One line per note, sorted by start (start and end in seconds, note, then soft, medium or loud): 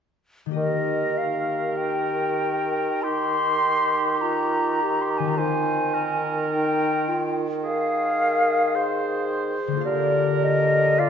0.46 4.36 D#3 soft
0.46 4.38 A#3 soft
0.51 4.41 G4 soft
0.51 4.43 D#5 soft
0.56 5.33 D#3 soft
0.56 3.06 G4 soft
0.56 3.05 A#4 soft
0.56 1.19 D#5 soft
1.18 1.78 F5 soft
1.77 3.04 G5 soft
3.02 4.21 D#4 soft
3.02 5.37 G4 soft
3.02 4.23 C6 medium
4.21 4.79 F4 soft
4.21 5.03 A#5 soft
4.82 5.41 G4 soft
5.02 5.12 C6 soft
5.10 5.19 A#5 soft
5.18 9.09 D#3 soft
5.18 5.30 G#5 soft
5.24 9.14 C4 soft
5.24 9.18 F4 soft
5.24 5.39 A#5 soft
5.33 9.23 F5 soft
5.37 9.56 D#3 soft
5.37 6.34 D#4 soft
5.37 5.96 C5 soft
5.37 6.50 G#5 medium
5.94 7.37 A#4 soft
6.50 7.09 D#4 soft
6.50 7.35 G5 soft
7.08 7.45 F4 soft
7.63 8.77 G#4 soft
7.63 8.77 A#4 soft
7.63 9.27 F5 medium
8.75 9.85 G#4 soft
8.75 9.85 C5 soft
9.67 11.10 D3 soft
9.72 11.10 A#3 soft
9.77 11.10 F4 soft
9.81 11.10 F5 soft
9.85 11.10 D3 soft
9.85 11.01 G4 medium
9.85 11.00 A#4 soft
9.85 10.45 D5 medium
10.43 11.01 D#5 medium
10.99 11.10 F4 soft
10.99 11.10 D5 soft
10.99 11.10 F5 medium